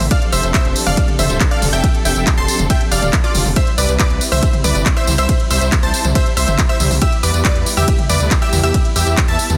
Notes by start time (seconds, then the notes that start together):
0.00 A1, open hi-hat, mid tom, tambourine
0.11 F3 C4 D4 G4 A4 D5 F5 F6, kick, closed hi-hat, ride, tambourine
0.22 closed hi-hat
0.32 F1 C5 E5 E6, open hi-hat, tambourine
0.43 F1, closed hi-hat, tambourine
0.54 C5 E5 E6, kick, clap, closed hi-hat, ride, tambourine
0.65 F1, closed hi-hat
0.76 open hi-hat, tambourine
0.86 F1 D5 F5 F6, open hi-hat, mid tom, tambourine
0.97 kick, closed hi-hat, ride, tambourine
1.08 closed hi-hat, mid tom
1.19 F1 C5 E5 E6, open hi-hat, mid tom, tambourine
1.30 D1, closed hi-hat, tambourine
1.40 kick, clap, closed hi-hat, ride
1.51 D5 F5 F6, closed hi-hat
1.62 F1, open hi-hat, mid tom, tambourine
1.73 F1 E5 G5 G6, closed hi-hat, tambourine
1.84 kick, closed hi-hat, ride, tambourine
1.94 closed hi-hat
2.05 F1 E5 G5 G6, open hi-hat, tambourine
2.16 F1, closed hi-hat, tambourine
2.27 kick, clap, closed hi-hat, ride, tambourine
2.38 F1 A5 C6 C7, closed hi-hat
2.48 open hi-hat, tambourine
2.59 F1, closed hi-hat, mid tom, tambourine
2.70 E5 G5 G6, kick, closed hi-hat, ride, tambourine
2.81 closed hi-hat
2.91 F1 D5 F5 F6, open hi-hat, tambourine
3.02 D1, closed hi-hat, mid tom, tambourine
3.13 kick, clap, closed hi-hat, ride
3.24 F4 D5 D6, closed hi-hat
3.35 F1, open hi-hat, mid tom, tambourine
3.45 F1, open hi-hat, mid tom, tambourine
3.56 G3 C4 E4 C5 E5 E6, kick, closed hi-hat, ride, tambourine
3.67 closed hi-hat
3.78 C2 B4 D5 D6, open hi-hat, tambourine
3.89 C2, closed hi-hat, tambourine
3.99 B4 D5 D6, kick, clap, closed hi-hat, ride, tambourine
4.10 C2, closed hi-hat
4.21 open hi-hat, tambourine
4.32 C2 C5 E5 E6, open hi-hat, mid tom, tambourine
4.43 kick, closed hi-hat, ride, tambourine
4.53 closed hi-hat, mid tom
4.64 C2 B4 D5 D6, open hi-hat, mid tom, tambourine
4.75 G1, closed hi-hat, tambourine
4.86 kick, clap, closed hi-hat, ride
4.97 C5 E5 E6, closed hi-hat
5.07 C2, open hi-hat, mid tom, tambourine
5.18 C2 C5 E5 E6, closed hi-hat, tambourine
5.29 kick, closed hi-hat, ride, tambourine
5.40 closed hi-hat
5.51 C2 C5 E5 E6, open hi-hat, tambourine
5.61 C2, closed hi-hat, tambourine
5.72 kick, clap, closed hi-hat, ride, tambourine
5.83 C2 C5 A5 A6, closed hi-hat
5.94 open hi-hat, tambourine
6.05 C2, closed hi-hat, mid tom, tambourine
6.15 C5 E5 E6, kick, closed hi-hat, ride, tambourine
6.26 closed hi-hat
6.37 C2 C5 E5 E6, open hi-hat, tambourine
6.48 G1, closed hi-hat, mid tom, tambourine
6.58 kick, clap, closed hi-hat, ride, tambourine
6.69 C5 E5 E6, closed hi-hat
6.80 C2, open hi-hat, mid tom, tambourine
6.91 C2, open hi-hat, mid tom, tambourine
7.02 B3 E4 G4 E5 E6, kick, closed hi-hat, ride
7.12 closed hi-hat
7.23 E2 B4 D5 D6, open hi-hat, tambourine
7.34 E2, closed hi-hat, tambourine
7.45 B4 D5 D6, kick, clap, closed hi-hat, ride
7.56 E2, closed hi-hat
7.66 open hi-hat, tambourine
7.77 E2 G4 E5 E6, open hi-hat, mid tom, tambourine
7.88 kick, closed hi-hat, ride
7.99 closed hi-hat, mid tom
8.10 E2 B4 D5 D6, open hi-hat, mid tom, tambourine
8.20 D2, closed hi-hat, tambourine
8.31 kick, clap, closed hi-hat, ride, tambourine
8.42 G4 E5 E6, closed hi-hat
8.53 E2, open hi-hat, mid tom, tambourine
8.63 E2 G4 E5 E6, closed hi-hat, tambourine
8.74 kick, closed hi-hat, ride, tambourine
8.85 closed hi-hat
8.96 E2 G4 E5 E6, open hi-hat, tambourine
9.07 E2, closed hi-hat, tambourine
9.17 kick, clap, closed hi-hat, ride, tambourine
9.28 E2 E5 A5 A6, closed hi-hat
9.39 open hi-hat, tambourine
9.50 E2, closed hi-hat, mid tom, tambourine